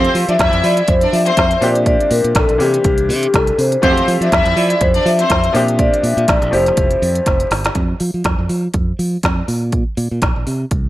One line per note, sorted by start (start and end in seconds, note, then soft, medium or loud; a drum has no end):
0.00 1.59 E3 medium
0.00 1.58 F3 medium
0.00 1.58 A3 medium
0.00 0.10 C4 loud
0.00 1.59 C4 medium
0.00 1.59 G4 medium
0.00 0.10 C5 loud
0.00 0.26 F5 loud
0.04 closed hi-hat soft
0.15 0.24 F3 loud
0.15 open hi-hat medium
0.28 0.36 F3 medium
0.28 0.37 D4 medium
0.28 0.37 D5 medium
0.28 0.65 E5 loud
0.28 closed hi-hat soft
0.39 0.49 F2 loud
0.39 0.86 E4 medium
0.39 0.86 E5 loud
0.39 kick loud
0.39 snare loud
0.39 closed hi-hat medium
0.53 0.60 F2 medium
0.53 closed hi-hat soft
0.64 0.81 F3 loud
0.64 0.89 D5 loud
0.64 open hi-hat medium
0.77 closed hi-hat soft
0.88 1.06 F2 loud
0.88 1.00 C5 loud
0.88 kick loud
0.88 closed hi-hat medium
1.01 1.11 D4 medium
1.01 1.11 D5 medium
1.01 closed hi-hat soft
1.13 1.30 F3 medium
1.13 1.64 E5 loud
1.13 open hi-hat medium
1.26 1.60 C4 medium
1.26 1.60 C5 loud
1.26 closed hi-hat medium
1.37 1.55 F2 medium
1.37 kick loud
1.37 snare loud
1.37 closed hi-hat medium
1.51 closed hi-hat soft
1.61 1.96 A#2 loud
1.61 2.58 F3 medium
1.61 2.57 A#3 medium
1.61 2.58 C4 medium
1.61 2.59 D4 medium
1.61 2.59 G4 medium
1.61 1.74 D5 medium
1.61 open hi-hat medium
1.75 closed hi-hat soft
1.86 2.10 D5 loud
1.86 kick loud
1.86 closed hi-hat medium
2.01 closed hi-hat soft
2.11 2.20 A#2 loud
2.11 2.37 A#4 loud
2.11 open hi-hat medium
2.24 2.32 A#2 medium
2.24 closed hi-hat soft
2.35 2.45 A#1 loud
2.35 2.61 A4 medium
2.35 kick loud
2.35 snare loud
2.35 closed hi-hat medium
2.49 2.57 A#1 loud
2.49 closed hi-hat soft
2.58 2.77 C3 loud
2.58 3.79 E3 medium
2.58 3.80 A#3 medium
2.58 3.80 C4 medium
2.58 3.81 D4 soft
2.58 3.36 G4 loud
2.58 3.81 G4 medium
2.58 open hi-hat medium
2.74 closed hi-hat soft
2.84 3.10 C2 loud
2.84 kick loud
2.84 closed hi-hat medium
2.98 closed hi-hat soft
3.09 3.26 C3 loud
3.09 open hi-hat medium
3.23 closed hi-hat medium
3.34 3.51 C2 loud
3.34 3.60 A4 medium
3.34 kick loud
3.34 snare loud
3.34 closed hi-hat medium
3.47 closed hi-hat soft
3.58 3.75 C3 loud
3.58 3.84 C5 medium
3.58 open hi-hat medium
3.72 closed hi-hat soft
3.82 4.00 F2 loud
3.82 5.52 E3 medium
3.82 5.51 F3 medium
3.82 5.51 A3 medium
3.82 4.02 C4 loud
3.82 5.51 C4 medium
3.82 3.90 F#4 medium
3.82 4.03 C5 loud
3.82 4.19 F5 loud
3.82 kick loud
3.82 closed hi-hat medium
3.91 5.55 G4 medium
3.97 closed hi-hat soft
4.08 4.17 F3 loud
4.08 open hi-hat medium
4.21 4.28 F3 loud
4.21 4.30 D4 medium
4.21 4.30 D5 medium
4.21 4.58 E5 loud
4.21 closed hi-hat soft
4.31 4.42 F2 loud
4.31 4.78 E4 medium
4.31 4.78 E5 loud
4.31 kick loud
4.31 snare loud
4.31 closed hi-hat medium
4.45 4.53 F2 loud
4.45 closed hi-hat soft
4.56 4.73 F3 loud
4.56 4.82 D5 medium
4.56 open hi-hat medium
4.70 closed hi-hat medium
4.81 4.98 F2 loud
4.81 5.07 C5 medium
4.81 kick loud
4.81 closed hi-hat medium
4.94 5.03 D4 medium
4.94 5.03 D5 loud
4.94 closed hi-hat soft
5.06 5.23 F3 loud
5.06 5.51 E5 loud
5.06 open hi-hat medium
5.19 5.52 C4 medium
5.19 5.52 C5 medium
5.19 closed hi-hat soft
5.30 5.47 F2 medium
5.30 kick loud
5.30 snare loud
5.30 closed hi-hat medium
5.44 closed hi-hat soft
5.53 5.88 A#2 medium
5.53 6.49 F3 medium
5.53 6.50 A#3 medium
5.53 6.51 C4 medium
5.53 6.51 D4 medium
5.53 6.52 G4 medium
5.53 5.74 E5 medium
5.53 open hi-hat medium
5.68 closed hi-hat soft
5.75 5.80 E5 medium
5.75 closed hi-hat medium
5.79 6.02 D5 loud
5.79 kick loud
5.94 closed hi-hat soft
6.03 6.13 A#2 medium
6.03 6.30 E5 medium
6.03 open hi-hat medium
6.17 6.25 A#2 medium
6.17 closed hi-hat soft
6.28 6.38 A#1 loud
6.28 6.54 D5 medium
6.28 kick loud
6.28 snare loud
6.28 closed hi-hat medium
6.42 6.49 A#1 loud
6.42 closed hi-hat soft
6.51 6.70 F1 loud
6.51 7.72 F3 medium
6.51 7.73 A3 medium
6.51 7.73 C4 medium
6.51 7.74 E4 soft
6.51 7.74 G4 medium
6.51 7.48 C5 medium
6.51 open hi-hat medium
6.66 snare soft
6.66 closed hi-hat soft
6.77 6.95 F1 medium
6.77 kick loud
6.77 closed hi-hat medium
6.91 closed hi-hat soft
7.02 7.19 F2 loud
7.02 open hi-hat medium
7.15 closed hi-hat soft
7.26 7.44 F1 medium
7.26 kick loud
7.26 snare medium
7.26 closed hi-hat medium
7.40 closed hi-hat soft
7.51 7.68 G1 loud
7.51 snare loud
7.51 open hi-hat medium
7.65 snare loud
7.65 closed hi-hat soft
7.75 7.93 F2 medium
7.75 kick medium
7.75 closed hi-hat medium
8.00 8.10 F3 medium
8.00 open hi-hat medium
8.14 8.22 F3 medium
8.24 8.35 F2 medium
8.24 kick loud
8.24 snare loud
8.24 closed hi-hat medium
8.38 8.46 F2 medium
8.49 8.67 F3 medium
8.49 open hi-hat medium
8.74 8.91 F2 medium
8.74 kick loud
8.74 closed hi-hat medium
8.99 9.16 F3 medium
8.99 open hi-hat medium
9.23 9.41 F2 medium
9.23 kick medium
9.23 snare loud
9.23 closed hi-hat medium
9.48 9.82 A#2 medium
9.48 open hi-hat medium
9.72 kick loud
9.72 closed hi-hat medium
9.97 10.07 A#2 medium
9.97 open hi-hat medium
10.11 10.19 A#2 medium
10.22 10.32 A#1 loud
10.22 kick loud
10.22 snare loud
10.22 closed hi-hat medium
10.36 10.44 A#1 medium
10.47 10.64 C3 medium
10.47 open hi-hat medium
10.71 10.89 C2 medium
10.71 kick loud
10.71 closed hi-hat medium